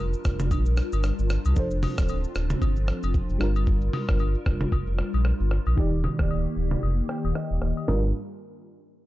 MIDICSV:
0, 0, Header, 1, 5, 480
1, 0, Start_track
1, 0, Key_signature, -2, "minor"
1, 0, Tempo, 526316
1, 1427, Time_signature, 4, 2, 24, 8
1, 8266, End_track
2, 0, Start_track
2, 0, Title_t, "FM electric piano"
2, 0, Program_c, 0, 5
2, 0, Control_c, 0, 64, 127
2, 0, Note_on_c, 0, 55, 73
2, 0, Note_on_c, 0, 62, 70
2, 0, Note_on_c, 0, 65, 68
2, 0, Note_on_c, 0, 70, 86
2, 1380, Note_off_c, 0, 55, 0
2, 1387, Note_off_c, 0, 62, 0
2, 1395, Note_off_c, 0, 65, 0
2, 1402, Note_off_c, 0, 70, 0
2, 1405, Note_on_c, 0, 53, 74
2, 1420, Note_on_c, 0, 62, 67
2, 1435, Note_on_c, 0, 69, 68
2, 1440, Control_c, 0, 64, 0
2, 1450, Note_on_c, 0, 72, 81
2, 1617, Control_c, 0, 64, 127
2, 3062, Note_off_c, 0, 53, 0
2, 3070, Note_off_c, 0, 62, 0
2, 3078, Note_off_c, 0, 69, 0
2, 3085, Note_on_c, 0, 55, 75
2, 3086, Note_off_c, 0, 72, 0
2, 3101, Note_on_c, 0, 62, 69
2, 3116, Note_on_c, 0, 65, 69
2, 3118, Control_c, 0, 64, 0
2, 3131, Note_on_c, 0, 70, 81
2, 3282, Control_c, 0, 64, 127
2, 4980, Note_off_c, 0, 55, 0
2, 4988, Note_off_c, 0, 62, 0
2, 4995, Note_off_c, 0, 65, 0
2, 5003, Note_off_c, 0, 70, 0
2, 5245, Note_on_c, 0, 51, 76
2, 5260, Note_on_c, 0, 63, 69
2, 5275, Note_on_c, 0, 67, 71
2, 5280, Control_c, 0, 64, 0
2, 5290, Note_on_c, 0, 74, 85
2, 5430, Control_c, 0, 64, 127
2, 6468, Note_on_c, 0, 79, 72
2, 6691, Note_off_c, 0, 79, 0
2, 6707, Note_on_c, 0, 75, 76
2, 7140, Note_off_c, 0, 51, 0
2, 7147, Note_off_c, 0, 63, 0
2, 7154, Note_off_c, 0, 75, 0
2, 7155, Note_off_c, 0, 67, 0
2, 7162, Note_off_c, 0, 74, 0
2, 7187, Note_on_c, 0, 62, 75
2, 7188, Note_on_c, 0, 55, 85
2, 7188, Note_on_c, 0, 65, 77
2, 7188, Note_on_c, 0, 70, 94
2, 7198, Control_c, 0, 64, 0
2, 7411, Note_off_c, 0, 55, 0
2, 7411, Note_off_c, 0, 62, 0
2, 7411, Note_off_c, 0, 65, 0
2, 7411, Note_off_c, 0, 70, 0
2, 8266, End_track
3, 0, Start_track
3, 0, Title_t, "Analog synth pad"
3, 0, Program_c, 1, 89
3, 0, Note_on_c, 1, 55, 84
3, 0, Note_on_c, 1, 62, 78
3, 0, Note_on_c, 1, 65, 78
3, 0, Note_on_c, 1, 70, 93
3, 1408, Note_off_c, 1, 55, 0
3, 1408, Note_off_c, 1, 70, 0
3, 1426, Note_on_c, 1, 60, 87
3, 3071, Note_off_c, 1, 62, 0
3, 3090, Note_off_c, 1, 60, 0
3, 3107, Note_on_c, 1, 55, 85
3, 3107, Note_on_c, 1, 70, 92
3, 5231, Note_off_c, 1, 65, 0
3, 5246, Note_off_c, 1, 55, 0
3, 5246, Note_off_c, 1, 70, 0
3, 5267, Note_on_c, 1, 67, 91
3, 5268, Note_on_c, 1, 51, 82
3, 5268, Note_on_c, 1, 58, 80
3, 7168, Note_off_c, 1, 51, 0
3, 7168, Note_off_c, 1, 58, 0
3, 7168, Note_off_c, 1, 67, 0
3, 7189, Note_on_c, 1, 55, 72
3, 7189, Note_on_c, 1, 62, 67
3, 7189, Note_on_c, 1, 65, 68
3, 7189, Note_on_c, 1, 70, 82
3, 7411, Note_off_c, 1, 55, 0
3, 7411, Note_off_c, 1, 65, 0
3, 7412, Note_off_c, 1, 62, 0
3, 7412, Note_off_c, 1, 70, 0
3, 8266, End_track
4, 0, Start_track
4, 0, Title_t, "Sub bass"
4, 0, Program_c, 2, 38
4, 0, Note_on_c, 2, 29, 90
4, 133, Note_off_c, 2, 29, 0
4, 230, Note_on_c, 2, 29, 94
4, 465, Note_on_c, 2, 34, 97
4, 479, Note_off_c, 2, 29, 0
4, 738, Note_off_c, 2, 34, 0
4, 846, Note_on_c, 2, 31, 102
4, 1018, Note_off_c, 2, 31, 0
4, 1086, Note_on_c, 2, 31, 96
4, 1258, Note_off_c, 2, 31, 0
4, 1326, Note_on_c, 2, 36, 92
4, 1399, Note_off_c, 2, 36, 0
4, 1427, Note_on_c, 2, 29, 113
4, 1699, Note_off_c, 2, 29, 0
4, 1809, Note_on_c, 2, 26, 82
4, 2052, Note_off_c, 2, 26, 0
4, 2147, Note_on_c, 2, 26, 98
4, 2319, Note_off_c, 2, 26, 0
4, 2386, Note_on_c, 2, 31, 100
4, 2658, Note_off_c, 2, 31, 0
4, 2767, Note_on_c, 2, 29, 95
4, 2939, Note_off_c, 2, 29, 0
4, 3006, Note_on_c, 2, 29, 95
4, 3079, Note_off_c, 2, 29, 0
4, 3107, Note_on_c, 2, 31, 103
4, 3551, Note_off_c, 2, 31, 0
4, 3729, Note_on_c, 2, 31, 93
4, 3972, Note_off_c, 2, 31, 0
4, 4070, Note_on_c, 2, 29, 89
4, 4241, Note_off_c, 2, 29, 0
4, 4306, Note_on_c, 2, 29, 99
4, 4578, Note_off_c, 2, 29, 0
4, 4686, Note_on_c, 2, 34, 85
4, 4858, Note_off_c, 2, 34, 0
4, 4927, Note_on_c, 2, 31, 97
4, 5099, Note_off_c, 2, 31, 0
4, 5167, Note_on_c, 2, 34, 97
4, 5239, Note_off_c, 2, 34, 0
4, 5268, Note_on_c, 2, 27, 119
4, 5539, Note_off_c, 2, 27, 0
4, 5650, Note_on_c, 2, 26, 90
4, 5893, Note_off_c, 2, 26, 0
4, 5987, Note_on_c, 2, 26, 101
4, 6159, Note_off_c, 2, 26, 0
4, 6227, Note_on_c, 2, 29, 104
4, 6399, Note_off_c, 2, 29, 0
4, 6607, Note_on_c, 2, 27, 95
4, 6679, Note_off_c, 2, 27, 0
4, 6847, Note_on_c, 2, 27, 99
4, 6919, Note_off_c, 2, 27, 0
4, 6947, Note_on_c, 2, 26, 100
4, 7047, Note_off_c, 2, 26, 0
4, 7188, Note_on_c, 2, 31, 105
4, 7411, Note_off_c, 2, 31, 0
4, 8266, End_track
5, 0, Start_track
5, 0, Title_t, "Drums"
5, 126, Note_on_c, 9, 82, 53
5, 217, Note_off_c, 9, 82, 0
5, 225, Note_on_c, 9, 82, 61
5, 229, Note_on_c, 9, 37, 92
5, 230, Note_on_c, 9, 36, 91
5, 317, Note_off_c, 9, 82, 0
5, 320, Note_off_c, 9, 37, 0
5, 321, Note_off_c, 9, 36, 0
5, 362, Note_on_c, 9, 45, 91
5, 363, Note_on_c, 9, 82, 87
5, 453, Note_off_c, 9, 45, 0
5, 454, Note_off_c, 9, 82, 0
5, 466, Note_on_c, 9, 36, 95
5, 468, Note_on_c, 9, 67, 79
5, 470, Note_on_c, 9, 82, 81
5, 557, Note_off_c, 9, 36, 0
5, 559, Note_off_c, 9, 67, 0
5, 561, Note_off_c, 9, 82, 0
5, 603, Note_on_c, 9, 82, 50
5, 694, Note_off_c, 9, 82, 0
5, 702, Note_on_c, 9, 82, 44
5, 706, Note_on_c, 9, 37, 101
5, 793, Note_off_c, 9, 82, 0
5, 797, Note_off_c, 9, 37, 0
5, 846, Note_on_c, 9, 82, 97
5, 851, Note_on_c, 9, 67, 82
5, 937, Note_off_c, 9, 82, 0
5, 942, Note_off_c, 9, 67, 0
5, 946, Note_on_c, 9, 82, 68
5, 947, Note_on_c, 9, 37, 94
5, 1037, Note_off_c, 9, 82, 0
5, 1038, Note_off_c, 9, 37, 0
5, 1087, Note_on_c, 9, 82, 56
5, 1178, Note_off_c, 9, 82, 0
5, 1185, Note_on_c, 9, 82, 47
5, 1187, Note_on_c, 9, 37, 100
5, 1276, Note_off_c, 9, 82, 0
5, 1278, Note_off_c, 9, 37, 0
5, 1326, Note_on_c, 9, 82, 105
5, 1329, Note_on_c, 9, 67, 83
5, 1417, Note_off_c, 9, 82, 0
5, 1420, Note_off_c, 9, 67, 0
5, 1426, Note_on_c, 9, 82, 73
5, 1428, Note_on_c, 9, 36, 114
5, 1517, Note_off_c, 9, 82, 0
5, 1519, Note_off_c, 9, 36, 0
5, 1561, Note_on_c, 9, 82, 54
5, 1652, Note_off_c, 9, 82, 0
5, 1667, Note_on_c, 9, 45, 90
5, 1667, Note_on_c, 9, 46, 51
5, 1667, Note_on_c, 9, 82, 52
5, 1672, Note_on_c, 9, 67, 79
5, 1758, Note_off_c, 9, 45, 0
5, 1758, Note_off_c, 9, 46, 0
5, 1758, Note_off_c, 9, 82, 0
5, 1763, Note_off_c, 9, 67, 0
5, 1805, Note_on_c, 9, 82, 103
5, 1806, Note_on_c, 9, 37, 106
5, 1809, Note_on_c, 9, 36, 92
5, 1897, Note_off_c, 9, 82, 0
5, 1898, Note_off_c, 9, 37, 0
5, 1900, Note_off_c, 9, 36, 0
5, 1903, Note_on_c, 9, 82, 87
5, 1911, Note_on_c, 9, 67, 72
5, 1994, Note_off_c, 9, 82, 0
5, 2002, Note_off_c, 9, 67, 0
5, 2047, Note_on_c, 9, 82, 57
5, 2138, Note_off_c, 9, 82, 0
5, 2146, Note_on_c, 9, 82, 62
5, 2149, Note_on_c, 9, 37, 90
5, 2237, Note_off_c, 9, 82, 0
5, 2240, Note_off_c, 9, 37, 0
5, 2282, Note_on_c, 9, 45, 95
5, 2283, Note_on_c, 9, 82, 87
5, 2373, Note_off_c, 9, 45, 0
5, 2374, Note_off_c, 9, 82, 0
5, 2386, Note_on_c, 9, 36, 94
5, 2388, Note_on_c, 9, 67, 78
5, 2391, Note_on_c, 9, 82, 81
5, 2477, Note_off_c, 9, 36, 0
5, 2479, Note_off_c, 9, 67, 0
5, 2482, Note_off_c, 9, 82, 0
5, 2524, Note_on_c, 9, 82, 49
5, 2615, Note_off_c, 9, 82, 0
5, 2623, Note_on_c, 9, 82, 46
5, 2628, Note_on_c, 9, 37, 98
5, 2714, Note_off_c, 9, 82, 0
5, 2719, Note_off_c, 9, 37, 0
5, 2767, Note_on_c, 9, 82, 92
5, 2771, Note_on_c, 9, 67, 85
5, 2858, Note_off_c, 9, 82, 0
5, 2862, Note_off_c, 9, 67, 0
5, 2867, Note_on_c, 9, 36, 99
5, 2867, Note_on_c, 9, 82, 67
5, 2958, Note_off_c, 9, 36, 0
5, 2958, Note_off_c, 9, 82, 0
5, 3008, Note_on_c, 9, 82, 56
5, 3099, Note_off_c, 9, 82, 0
5, 3106, Note_on_c, 9, 82, 46
5, 3108, Note_on_c, 9, 37, 96
5, 3197, Note_off_c, 9, 82, 0
5, 3199, Note_off_c, 9, 37, 0
5, 3246, Note_on_c, 9, 82, 104
5, 3248, Note_on_c, 9, 67, 82
5, 3338, Note_off_c, 9, 82, 0
5, 3340, Note_off_c, 9, 67, 0
5, 3346, Note_on_c, 9, 82, 73
5, 3348, Note_on_c, 9, 36, 125
5, 3438, Note_off_c, 9, 82, 0
5, 3439, Note_off_c, 9, 36, 0
5, 3481, Note_on_c, 9, 82, 56
5, 3572, Note_off_c, 9, 82, 0
5, 3587, Note_on_c, 9, 46, 53
5, 3587, Note_on_c, 9, 82, 52
5, 3588, Note_on_c, 9, 45, 87
5, 3592, Note_on_c, 9, 67, 83
5, 3679, Note_off_c, 9, 45, 0
5, 3679, Note_off_c, 9, 46, 0
5, 3679, Note_off_c, 9, 82, 0
5, 3683, Note_off_c, 9, 67, 0
5, 3726, Note_on_c, 9, 82, 98
5, 3727, Note_on_c, 9, 37, 115
5, 3730, Note_on_c, 9, 36, 91
5, 3817, Note_off_c, 9, 82, 0
5, 3818, Note_off_c, 9, 37, 0
5, 3821, Note_off_c, 9, 36, 0
5, 3824, Note_on_c, 9, 82, 92
5, 3831, Note_on_c, 9, 67, 76
5, 3915, Note_off_c, 9, 82, 0
5, 3922, Note_off_c, 9, 67, 0
5, 3967, Note_on_c, 9, 82, 56
5, 4058, Note_off_c, 9, 82, 0
5, 4066, Note_on_c, 9, 82, 64
5, 4069, Note_on_c, 9, 37, 95
5, 4070, Note_on_c, 9, 36, 95
5, 4157, Note_off_c, 9, 82, 0
5, 4160, Note_off_c, 9, 37, 0
5, 4161, Note_off_c, 9, 36, 0
5, 4202, Note_on_c, 9, 45, 95
5, 4203, Note_on_c, 9, 82, 84
5, 4293, Note_off_c, 9, 45, 0
5, 4294, Note_off_c, 9, 82, 0
5, 4306, Note_on_c, 9, 36, 98
5, 4308, Note_on_c, 9, 67, 83
5, 4310, Note_on_c, 9, 82, 81
5, 4397, Note_off_c, 9, 36, 0
5, 4399, Note_off_c, 9, 67, 0
5, 4401, Note_off_c, 9, 82, 0
5, 4443, Note_on_c, 9, 82, 48
5, 4534, Note_off_c, 9, 82, 0
5, 4542, Note_on_c, 9, 82, 45
5, 4547, Note_on_c, 9, 37, 105
5, 4634, Note_off_c, 9, 82, 0
5, 4638, Note_off_c, 9, 37, 0
5, 4686, Note_on_c, 9, 82, 96
5, 4690, Note_on_c, 9, 67, 81
5, 4777, Note_off_c, 9, 82, 0
5, 4782, Note_off_c, 9, 67, 0
5, 4785, Note_on_c, 9, 82, 63
5, 4786, Note_on_c, 9, 37, 99
5, 4876, Note_off_c, 9, 82, 0
5, 4878, Note_off_c, 9, 37, 0
5, 4927, Note_on_c, 9, 82, 55
5, 5018, Note_off_c, 9, 82, 0
5, 5025, Note_on_c, 9, 82, 50
5, 5027, Note_on_c, 9, 37, 96
5, 5116, Note_off_c, 9, 82, 0
5, 5118, Note_off_c, 9, 37, 0
5, 5166, Note_on_c, 9, 82, 106
5, 5168, Note_on_c, 9, 67, 88
5, 5258, Note_off_c, 9, 82, 0
5, 5260, Note_off_c, 9, 67, 0
5, 5265, Note_on_c, 9, 82, 76
5, 5268, Note_on_c, 9, 36, 119
5, 5357, Note_off_c, 9, 82, 0
5, 5359, Note_off_c, 9, 36, 0
5, 5401, Note_on_c, 9, 82, 58
5, 5492, Note_off_c, 9, 82, 0
5, 5507, Note_on_c, 9, 82, 51
5, 5508, Note_on_c, 9, 45, 87
5, 5512, Note_on_c, 9, 67, 79
5, 5599, Note_off_c, 9, 45, 0
5, 5599, Note_off_c, 9, 82, 0
5, 5603, Note_off_c, 9, 67, 0
5, 5646, Note_on_c, 9, 82, 105
5, 5647, Note_on_c, 9, 37, 111
5, 5650, Note_on_c, 9, 36, 89
5, 5737, Note_off_c, 9, 82, 0
5, 5738, Note_off_c, 9, 37, 0
5, 5741, Note_off_c, 9, 36, 0
5, 5743, Note_on_c, 9, 82, 87
5, 5751, Note_on_c, 9, 67, 74
5, 5834, Note_off_c, 9, 82, 0
5, 5842, Note_off_c, 9, 67, 0
5, 5887, Note_on_c, 9, 82, 54
5, 5978, Note_off_c, 9, 82, 0
5, 5985, Note_on_c, 9, 82, 60
5, 6077, Note_off_c, 9, 82, 0
5, 6122, Note_on_c, 9, 45, 95
5, 6124, Note_on_c, 9, 82, 82
5, 6214, Note_off_c, 9, 45, 0
5, 6215, Note_off_c, 9, 82, 0
5, 6228, Note_on_c, 9, 67, 84
5, 6231, Note_on_c, 9, 82, 83
5, 6320, Note_off_c, 9, 67, 0
5, 6322, Note_off_c, 9, 82, 0
5, 6363, Note_on_c, 9, 82, 50
5, 6454, Note_off_c, 9, 82, 0
5, 6463, Note_on_c, 9, 46, 45
5, 6463, Note_on_c, 9, 82, 46
5, 6467, Note_on_c, 9, 37, 105
5, 6554, Note_off_c, 9, 46, 0
5, 6554, Note_off_c, 9, 82, 0
5, 6558, Note_off_c, 9, 37, 0
5, 6607, Note_on_c, 9, 82, 95
5, 6610, Note_on_c, 9, 67, 80
5, 6698, Note_off_c, 9, 82, 0
5, 6702, Note_off_c, 9, 67, 0
5, 6706, Note_on_c, 9, 82, 68
5, 6707, Note_on_c, 9, 37, 104
5, 6797, Note_off_c, 9, 82, 0
5, 6798, Note_off_c, 9, 37, 0
5, 6847, Note_on_c, 9, 82, 56
5, 6938, Note_off_c, 9, 82, 0
5, 6946, Note_on_c, 9, 37, 97
5, 7038, Note_off_c, 9, 37, 0
5, 7086, Note_on_c, 9, 82, 102
5, 7089, Note_on_c, 9, 67, 86
5, 7177, Note_off_c, 9, 82, 0
5, 7180, Note_off_c, 9, 67, 0
5, 7187, Note_on_c, 9, 38, 102
5, 7187, Note_on_c, 9, 43, 104
5, 7187, Note_on_c, 9, 49, 87
5, 7190, Note_on_c, 9, 67, 89
5, 7279, Note_off_c, 9, 38, 0
5, 7279, Note_off_c, 9, 43, 0
5, 7279, Note_off_c, 9, 49, 0
5, 7281, Note_off_c, 9, 67, 0
5, 8266, End_track
0, 0, End_of_file